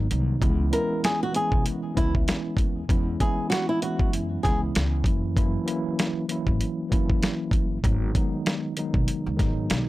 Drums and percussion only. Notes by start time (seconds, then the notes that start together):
0.11 closed hi-hat
0.42 kick, closed hi-hat
0.73 closed hi-hat
1.04 snare, closed hi-hat
1.34 closed hi-hat
1.52 kick
1.66 closed hi-hat
1.97 kick, closed hi-hat
2.15 kick
2.28 snare, closed hi-hat
2.57 kick, closed hi-hat
2.89 kick, closed hi-hat
3.20 kick, closed hi-hat
3.52 snare, closed hi-hat
3.82 closed hi-hat
3.99 kick
4.13 closed hi-hat
4.45 kick, snare, closed hi-hat
4.75 snare, closed hi-hat
5.04 kick, closed hi-hat
5.37 kick, closed hi-hat
5.68 closed hi-hat
5.99 snare, closed hi-hat
6.29 closed hi-hat
6.47 kick
6.61 closed hi-hat
6.92 kick, closed hi-hat
7.10 kick
7.23 snare, closed hi-hat
7.51 kick, closed hi-hat
7.84 kick, closed hi-hat
8.15 kick, closed hi-hat
8.46 snare, closed hi-hat
8.77 closed hi-hat
8.94 kick
9.08 closed hi-hat
9.39 kick, snare, closed hi-hat
9.70 snare, closed hi-hat